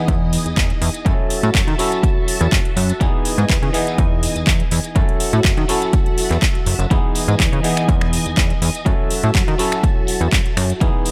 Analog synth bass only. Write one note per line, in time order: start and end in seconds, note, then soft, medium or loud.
0.08 0.38 E2 loud
0.46 0.55 E2 soft
0.57 0.73 E2 loud
0.82 0.90 E2 loud
1.06 1.14 F#2 loud
1.43 1.51 A2 medium
1.55 1.63 F#2 medium
1.67 1.75 D#3 medium
2.41 2.48 E2 medium
2.52 2.60 F#2 medium
2.77 2.93 F#2 medium
3.01 3.09 E2 loud
3.38 3.45 G#2 medium
3.50 3.58 E2 medium
3.62 3.70 C#3 medium
3.98 4.28 E2 loud
4.36 4.45 E2 soft
4.47 4.63 E2 loud
4.72 4.80 E2 loud
4.96 5.04 F#2 loud
5.33 5.41 A2 medium
5.45 5.53 F#2 medium
5.57 5.65 D#3 medium
6.31 6.38 E2 medium
6.66 6.75 F#1 medium
6.79 6.87 F#1 medium
6.91 6.99 E2 loud
7.28 7.36 G#2 medium
7.40 7.48 E2 medium
7.53 7.60 C#3 loud
7.89 8.19 E2 loud
8.26 8.35 E2 soft
8.37 8.53 E2 loud
8.62 8.70 E2 loud
8.86 8.94 F#2 loud
9.24 9.31 A2 medium
9.35 9.43 F#2 medium
9.48 9.55 D#3 loud
10.21 10.28 E2 medium
10.32 10.41 F#2 medium
10.57 10.73 F#2 medium
10.81 10.90 E2 loud